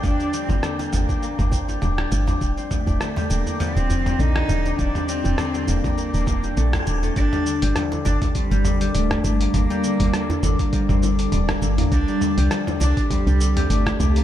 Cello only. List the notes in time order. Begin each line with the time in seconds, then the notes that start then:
0.04 D4
0.44 C4
0.64 A#3
2.72 A3
3.31 A#3
3.61 C4
4.20 D#4
4.79 D4
5.09 C4
5.68 A#3
7.17 D4
8.06 D4
8.35 G3
8.94 A3
9.25 A3
9.54 A#3
11.92 D4
12.81 D4
13.10 G3
13.70 A3
14.00 A3